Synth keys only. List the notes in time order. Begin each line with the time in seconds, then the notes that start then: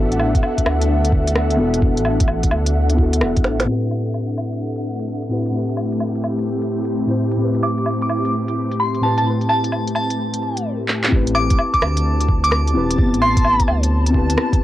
Already playing: B3 E4 F#4 B4
0.00 A4
1.57 B3 E4 F#4 A4
1.78 B3 E4
1.83 F#4 A4
2.94 B3 E4
3.00 F#4 A4
3.64 A2 C4 E4
3.70 G4 B4
5.29 A2 C4 E4 G4 B4
5.50 A2 C4 E4
5.56 G4 B4
7.07 A2 C4 E4 G4
7.11 C5
7.36 A2 C4
7.41 E4 G4
7.45 B4
9.01 A2 C4 E4 G4
9.05 B4
9.22 A2 C4
9.26 E4 G4 B4
11.08 C4 E4
11.13 G4 B4
12.73 C4 E4 G4 B4
12.95 C4 E4
13.00 B3 G4
14.10 C4 E4
14.16 G4 B4